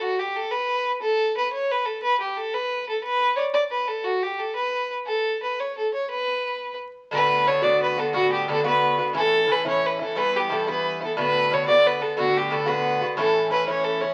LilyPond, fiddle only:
\new Staff \with { instrumentName = "Fiddle" } { \time 6/8 \key b \minor \tempo 4. = 119 fis'8 g'8 a'8 b'4~ b'32 r16. | a'4 b'8 cis''8 b'8 a'8 | b'8 g'8 a'8 b'4 a'8 | b'8.~ b'32 d''32 cis''8 d''8 b'8 a'8 |
fis'8 g'8 a'8 b'4~ b'32 r16. | a'4 b'8 cis''8 a'8 cis''8 | b'2 r4 | b'4 cis''8 d''8 b'8 a'8 |
fis'8 g'8 a'8 b'4~ b'32 r16. | a'4 b'8 cis''8 b'8 a'8 | b'8 g'8 a'8 b'4 a'8 | b'4 cis''8 d''8 b'8 a'8 |
fis'8 g'8 a'8 b'4~ b'32 r16. | a'4 b'8 cis''8 a'8 cis''8 | }